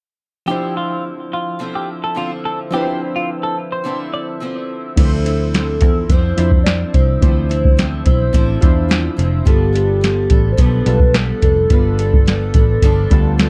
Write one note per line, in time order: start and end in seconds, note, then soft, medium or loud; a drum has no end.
0.46 1.59 D3 medium
0.46 2.68 F3 medium
0.46 1.59 F3 medium
0.46 1.60 C4 medium
0.46 2.69 D4 medium
0.46 2.70 E4 medium
0.46 1.61 E4 medium
0.46 0.75 G4 medium
0.51 2.71 C5 medium
0.77 1.03 F4 medium
1.33 1.60 F4 medium
1.59 2.14 D3 medium
1.59 2.15 F3 medium
1.59 2.16 C4 medium
1.59 2.17 E4 medium
1.75 1.88 G4 medium
2.04 2.17 A4 medium
2.15 2.70 D3 medium
2.15 2.72 F3 medium
2.15 2.73 C4 medium
2.15 2.74 E4 medium
2.15 2.30 F4 medium
2.45 2.59 A4 medium
2.70 3.83 D3 medium
2.70 4.92 F3 medium
2.70 3.84 F3 medium
2.70 3.85 C4 medium
2.70 4.93 D4 medium
2.70 4.94 E4 medium
2.70 3.86 E4 medium
2.70 3.00 G4 medium
2.76 2.81 B4 medium
2.82 4.98 C5 medium
3.16 3.29 F4 medium
3.43 3.57 A4 medium
3.72 3.99 C5 medium
3.84 4.40 D3 medium
3.84 4.41 F3 medium
3.84 4.42 C4 medium
3.84 4.43 E4 medium
4.14 4.27 D5 medium
4.40 4.97 D3 medium
4.40 4.97 F3 soft
4.40 4.98 C4 medium
4.40 4.98 E4 medium
4.96 5.81 D2 medium
4.96 5.26 D3 medium
4.96 5.80 F3 medium
4.96 5.26 F3 medium
4.96 5.26 C4 medium
4.96 5.81 D4 medium
4.96 5.81 E4 medium
4.96 5.24 E4 medium
4.96 6.11 A4 medium
4.96 5.05 B4 medium
4.96 kick loud
4.96 closed hi-hat medium
4.96 crash medium
5.05 5.85 C5 medium
5.26 5.53 F3 soft
5.26 5.54 C4 medium
5.26 5.54 E4 soft
5.26 closed hi-hat medium
5.54 5.82 D3 soft
5.54 5.82 F3 soft
5.54 5.82 C4 medium
5.54 5.81 E4 soft
5.54 snare medium
5.54 closed hi-hat medium
5.81 6.04 E2 medium
5.81 6.10 F3 soft
5.81 6.11 C4 medium
5.81 6.10 E4 medium
5.81 kick medium
5.81 closed hi-hat medium
6.09 6.32 F2 medium
6.09 6.38 D3 medium
6.09 6.39 F3 medium
6.09 6.38 C4 medium
6.09 6.37 E4 medium
6.09 6.65 C5 loud
6.09 kick medium
6.09 closed hi-hat medium
6.37 6.83 F2 medium
6.37 7.00 F3 medium
6.37 6.65 F3 soft
6.37 6.66 C4 soft
6.37 7.00 D4 medium
6.37 6.66 E4 soft
6.37 7.01 E4 medium
6.37 7.01 C5 medium
6.37 closed hi-hat medium
6.52 kick loud
6.64 6.94 D3 medium
6.64 6.94 F3 medium
6.64 6.94 C4 medium
6.64 6.96 D5 medium
6.64 snare loud
6.64 closed hi-hat medium
6.68 6.93 E4 medium
6.94 7.17 C2 medium
6.94 7.21 F3 soft
6.94 7.22 C4 soft
6.94 7.22 E4 soft
6.94 9.19 C5 loud
6.94 kick medium
6.94 closed hi-hat medium
7.20 8.02 D2 loud
7.20 7.50 D3 medium
7.20 7.28 E3 medium
7.20 7.50 F3 medium
7.20 7.50 C4 medium
7.20 8.05 D4 medium
7.20 8.05 E4 medium
7.20 7.48 E4 medium
7.20 8.06 C5 medium
7.20 kick loud
7.20 closed hi-hat medium
7.27 8.08 F3 medium
7.49 7.76 F3 soft
7.49 7.77 C4 soft
7.49 7.78 E4 medium
7.49 closed hi-hat medium
7.65 kick medium
7.77 8.06 D3 medium
7.77 8.06 F3 medium
7.77 8.05 C4 medium
7.77 8.04 E4 medium
7.77 snare medium
7.77 closed hi-hat medium
8.06 8.29 B1 medium
8.06 8.33 F3 soft
8.06 8.33 C4 medium
8.06 8.34 E4 medium
8.06 kick medium
8.06 closed hi-hat medium
8.33 8.57 A1 medium
8.33 8.62 D3 medium
8.33 8.62 F3 medium
8.33 8.61 C4 medium
8.33 8.59 E4 loud
8.33 kick medium
8.33 closed hi-hat medium
8.61 9.08 E2 medium
8.61 8.88 F3 soft
8.61 8.89 C4 soft
8.61 9.25 D4 medium
8.61 8.90 E4 soft
8.61 9.25 E4 medium
8.61 9.24 F4 medium
8.61 9.25 C5 medium
8.61 kick medium
8.61 closed hi-hat medium
8.89 9.18 D3 medium
8.89 9.17 F3 medium
8.89 9.17 C4 medium
8.89 9.15 E4 medium
8.89 snare loud
8.89 closed hi-hat medium
9.17 9.41 F1 medium
9.17 9.45 F3 soft
9.17 9.46 C4 soft
9.17 9.46 E4 medium
9.17 closed hi-hat medium
9.45 10.27 G1 loud
9.45 9.74 G2 medium
9.45 9.74 D3 medium
9.45 9.74 F3 medium
9.45 10.29 G3 medium
9.45 10.29 B3 medium
9.45 9.74 B3 medium
9.45 9.72 D4 medium
9.45 10.30 F4 medium
9.45 9.71 A4 medium
9.45 10.30 A4 medium
9.45 kick loud
9.45 closed hi-hat medium
9.49 10.54 G4 loud
9.73 10.00 F3 soft
9.73 10.01 B3 soft
9.73 10.02 D4 medium
9.73 10.02 A4 medium
9.73 closed hi-hat medium
10.01 10.30 F3 medium
10.01 10.30 B3 soft
10.01 10.29 D4 soft
10.01 10.28 A4 medium
10.01 snare medium
10.01 closed hi-hat medium
10.30 10.53 A1 medium
10.30 10.57 F3 soft
10.30 10.57 B3 soft
10.30 10.58 D4 medium
10.30 10.58 A4 medium
10.30 kick medium
10.30 closed hi-hat medium
10.52 10.61 C5 medium
10.57 10.81 B1 medium
10.57 10.86 G2 medium
10.57 10.86 D3 medium
10.57 10.86 F3 medium
10.57 10.86 B3 medium
10.57 10.86 D4 medium
10.57 10.84 A4 medium
10.57 11.17 B4 loud
10.57 kick medium
10.57 closed hi-hat medium
10.86 11.32 B1 medium
10.86 11.13 F3 soft
10.86 11.49 G3 medium
10.86 11.49 B3 medium
10.86 11.13 B3 soft
10.86 11.14 D4 soft
10.86 11.49 F4 medium
10.86 11.14 A4 soft
10.86 11.50 A4 medium
10.86 closed hi-hat medium
11.00 kick loud
11.14 11.42 F3 soft
11.14 11.42 B3 medium
11.14 11.41 D4 medium
11.14 11.43 A4 medium
11.14 11.40 A4 medium
11.14 snare loud
11.14 closed hi-hat medium
11.42 11.65 F1 medium
11.42 11.70 F3 soft
11.42 11.70 B3 soft
11.42 11.70 D4 medium
11.42 11.70 A4 soft
11.42 13.49 A4 loud
11.42 kick medium
11.42 closed hi-hat medium
11.70 12.51 G1 medium
11.70 11.98 G2 medium
11.70 11.99 D3 medium
11.70 11.99 F3 medium
11.70 12.54 G3 medium
11.70 11.98 B3 medium
11.70 12.54 B3 medium
11.70 11.98 D4 medium
11.70 12.54 F4 medium
11.70 11.97 A4 medium
11.70 12.55 B4 medium
11.70 kick loud
11.70 closed hi-hat medium
11.98 12.25 F3 soft
11.98 12.26 B3 soft
11.98 12.27 D4 soft
11.98 12.26 A4 soft
11.98 closed hi-hat medium
12.14 kick medium
12.26 12.54 F3 medium
12.26 12.55 B3 medium
12.26 12.54 D4 medium
12.26 12.53 A4 medium
12.26 snare medium
12.26 closed hi-hat medium
12.54 12.77 A1 medium
12.54 12.82 F3 soft
12.54 12.82 B3 medium
12.54 12.83 D4 medium
12.54 12.83 A4 medium
12.54 kick medium
12.54 closed hi-hat medium
12.82 13.05 G1 medium
12.82 13.11 G2 medium
12.82 13.11 D3 medium
12.82 13.11 F3 medium
12.82 13.11 B3 medium
12.82 13.10 D4 medium
12.82 13.09 A4 loud
12.82 kick medium
12.82 closed hi-hat medium
13.10 13.49 D2 medium
13.10 13.37 F3 soft
13.10 13.49 G3 medium
13.10 13.49 B3 medium
13.10 13.37 B3 soft
13.10 13.38 D4 soft
13.10 13.49 F4 medium
13.10 13.39 A4 medium
13.10 13.49 A4 medium
13.10 kick medium
13.10 closed hi-hat medium
13.38 13.49 F3 medium
13.38 13.49 B3 medium
13.38 13.49 D4 medium
13.38 13.49 A4 medium
13.38 snare loud
13.38 closed hi-hat medium